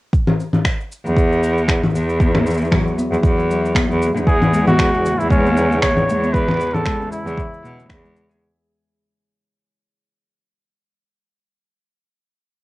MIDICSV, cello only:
0, 0, Header, 1, 2, 480
1, 0, Start_track
1, 0, Key_signature, 4, "major"
1, 0, Tempo, 517241
1, 123, Time_signature, 4, 2, 24, 8
1, 11724, End_track
2, 0, Start_track
2, 0, Title_t, "Cello"
2, 0, Program_c, 0, 42
2, 984, Note_on_c, 0, 40, 97
2, 1752, Note_off_c, 0, 40, 0
2, 1802, Note_on_c, 0, 40, 88
2, 2709, Note_off_c, 0, 40, 0
2, 2892, Note_on_c, 0, 40, 93
2, 2967, Note_off_c, 0, 40, 0
2, 3000, Note_on_c, 0, 40, 76
2, 3548, Note_off_c, 0, 40, 0
2, 3616, Note_on_c, 0, 40, 88
2, 3771, Note_off_c, 0, 40, 0
2, 3860, Note_on_c, 0, 40, 81
2, 4750, Note_off_c, 0, 40, 0
2, 4817, Note_on_c, 0, 40, 100
2, 5589, Note_off_c, 0, 40, 0
2, 5645, Note_on_c, 0, 40, 87
2, 6550, Note_off_c, 0, 40, 0
2, 6738, Note_on_c, 0, 40, 99
2, 6810, Note_off_c, 0, 40, 0
2, 7090, Note_on_c, 0, 47, 96
2, 7259, Note_off_c, 0, 47, 0
2, 7329, Note_on_c, 0, 40, 93
2, 7752, Note_off_c, 0, 40, 0
2, 11724, End_track
0, 0, End_of_file